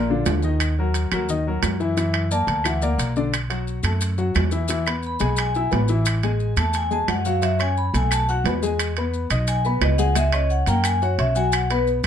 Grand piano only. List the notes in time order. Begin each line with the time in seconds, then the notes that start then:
0.10 D3 D4 F4
0.44 D#3 D#4 D#5
0.79 F#3 F#4 A#4
1.13 F#3 F#4 A#4
1.29 D#3 D#4 D#5
1.47 F#3 F#4 A#4
1.80 E3 E4 E5
1.97 E3 E4 E5
2.31 A#3 A#4 D5
2.65 E3 E4 E5
2.82 A#3 A#4 D5
3.17 D3 D4 D5
3.50 F#3 F#4 F#5
3.85 A3 A4 A5
4.18 F#3 F#4 F#5
4.52 E3 E4 E5
4.69 E3 E4 E5
4.87 B3 B4 B5
5.20 G#3 G#4 G#5
5.56 E4 E5 E6
5.71 B3 B4 B5
5.89 E3 E4 E5
6.24 G#3 G#4 G#5
6.57 A3 A4 A5
6.91 G#3 G#4 G#5
7.26 F#3 F#4 F#5
7.42 F#3 F#4 F#5
7.59 C#4 C#5 C#6
7.94 A3 A4 A5
8.29 F#4 F#5 F#6
8.46 B3 B4 B5
8.63 G#3 G#4 G#5
8.98 B3 B4 B5
9.31 D#4 D#5 D#6
9.65 B3 B4 B5
9.99 G#3 G#4 G#5
10.16 G#3 G#4 G#5
10.33 C#4 C#5 C#6
10.68 A#3 A#4 A#5
11.02 F#4 F#5 F#6
11.19 C#4 C#5 C#6
11.35 F#3 F#4 F#5
11.70 B3 B4 B5